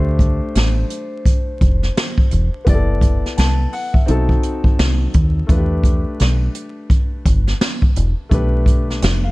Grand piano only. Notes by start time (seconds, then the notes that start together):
Already playing: A3 D4 G4 C5
2.65 B3 E4 G4
2.69 D5
2.74 A4
3.37 A5
3.73 F#5
3.93 E5
4.06 C4 D#4 F#4
4.10 A4
5.47 A3 D4 F4
5.51 B4
5.56 G4
8.29 A3 D4 G4
8.34 B4
9.23 F5